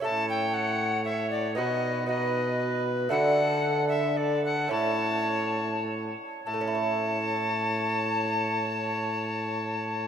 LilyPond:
<<
  \new Staff \with { instrumentName = "Recorder" } { \time 3/4 \key a \major \tempo 4 = 108 a''8 g''8 fis''4 e''8 d''8 | dis''4 dis''4. r8 | fis''4. e''8 d''8 fis''8 | a''2 r4 |
a''2.~ | a''2. | }
  \new Staff \with { instrumentName = "Viola" } { \time 3/4 \key a \major cis''2 cis''4 | b'4 b'2 | a'2 a'4 | cis''2~ cis''8 r8 |
cis''2.~ | cis''2. | }
  \new Staff \with { instrumentName = "Lute" } { \time 3/4 \key a \major <cis' e' a'>2. | <b dis' fis'>4 <b dis' fis'>2 | <a d' fis'>2. | <a cis' e'>2. |
<a, a cis' e' cis''>2.~ | <a, a cis' e' cis''>2. | }
  \new Staff \with { instrumentName = "Lute" } { \clef bass \time 3/4 \key a \major a,2. | b,2. | d2. | a,2~ a,8 r8 |
r2. | r2. | }
  \new Staff \with { instrumentName = "Trombone" } { \clef bass \time 3/4 \key a \major a,2. | b,2. | d2. | a,2~ a,8 r8 |
a,2.~ | a,2. | }
>>